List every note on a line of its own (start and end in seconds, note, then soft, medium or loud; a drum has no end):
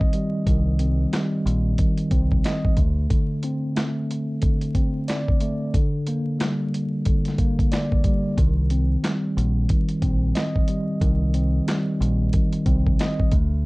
0.00 0.45 D#3 medium
0.00 0.14 G3 medium
0.00 0.80 C4 medium
0.00 1.46 D#5 medium
0.00 kick medium
0.13 1.11 G3 medium
0.13 closed hi-hat medium
0.46 1.04 C2 loud
0.46 1.78 D#3 medium
0.46 kick loud
0.46 closed hi-hat loud
0.79 2.10 C4 medium
0.79 closed hi-hat medium
1.12 2.77 G3 medium
1.12 snare loud
1.12 clap medium
1.12 closed hi-hat medium
1.46 1.74 A#1 loud
1.46 closed hi-hat medium
1.78 2.78 D#3 medium
1.78 kick loud
1.78 closed hi-hat medium
1.98 closed hi-hat medium
2.11 2.40 C2 medium
2.11 2.78 C4 medium
2.11 kick medium
2.11 closed hi-hat medium
2.32 kick medium
2.44 2.78 D#5 loud
2.44 snare loud
2.44 clap medium
2.44 closed hi-hat medium
2.65 kick loud
2.77 3.06 D2 loud
2.77 3.11 A3 medium
2.77 kick medium
2.77 closed hi-hat medium
3.10 4.40 D3 medium
3.10 kick loud
3.10 closed hi-hat medium
3.43 4.74 C4 medium
3.43 closed hi-hat medium
3.76 5.40 A3 medium
3.76 snare loud
3.76 clap medium
3.76 closed hi-hat medium
4.11 closed hi-hat medium
4.42 5.73 D3 medium
4.42 kick loud
4.42 closed hi-hat medium
4.61 closed hi-hat medium
4.75 5.74 C4 medium
4.75 kick medium
4.75 closed hi-hat medium
5.08 5.74 D5 loud
5.08 snare loud
5.08 clap medium
5.08 closed hi-hat medium
5.28 kick loud
5.40 5.74 A3 medium
5.40 closed hi-hat medium
5.74 7.04 D3 medium
5.74 kick loud
5.74 closed hi-hat loud
6.07 7.37 A#3 medium
6.07 closed hi-hat medium
6.39 8.03 G3 medium
6.39 snare loud
6.39 clap loud
6.39 closed hi-hat medium
6.74 closed hi-hat medium
7.05 8.38 D3 medium
7.05 kick loud
7.05 closed hi-hat medium
7.25 snare soft
7.25 closed hi-hat medium
7.38 8.38 A#3 medium
7.38 kick medium
7.38 closed hi-hat medium
7.59 kick medium
7.59 closed hi-hat medium
7.72 8.38 D5 medium
7.72 snare loud
7.72 clap medium
7.72 closed hi-hat medium
7.92 kick medium
8.04 8.38 G3 medium
8.04 kick medium
8.04 closed hi-hat medium
8.38 8.95 C2 loud
8.38 9.68 D#3 medium
8.38 kick loud
8.38 closed hi-hat medium
8.70 10.01 C4 medium
8.70 closed hi-hat medium
9.03 10.68 G3 medium
9.03 snare loud
9.03 clap loud
9.03 closed hi-hat medium
9.37 9.66 A#1 medium
9.37 closed hi-hat medium
9.69 11.00 D#3 medium
9.69 kick loud
9.69 closed hi-hat medium
9.89 closed hi-hat medium
10.02 10.31 A#1 loud
10.02 11.33 C4 medium
10.02 kick medium
10.02 closed hi-hat medium
10.35 12.00 D#5 loud
10.35 snare loud
10.35 clap medium
10.35 closed hi-hat medium
10.56 kick medium
10.68 11.66 G3 medium
10.68 closed hi-hat medium
11.01 11.59 C2 loud
11.01 12.32 D#3 medium
11.01 kick loud
11.01 closed hi-hat medium
11.34 12.65 C4 medium
11.34 closed hi-hat medium
11.67 13.32 G3 medium
11.67 snare loud
11.67 clap loud
11.67 closed hi-hat medium
12.01 12.29 A#1 loud
12.01 closed hi-hat medium
12.33 13.32 D#3 medium
12.33 kick loud
12.33 closed hi-hat medium
12.53 closed hi-hat medium
12.66 12.95 C2 medium
12.66 13.32 C4 medium
12.66 kick medium
12.66 closed hi-hat medium
12.87 kick medium
12.99 13.33 D#5 loud
12.99 snare loud
12.99 clap medium
12.99 closed hi-hat medium
13.20 kick medium
13.31 13.66 D2 loud
13.31 13.66 A3 medium
13.31 kick loud
13.31 closed hi-hat medium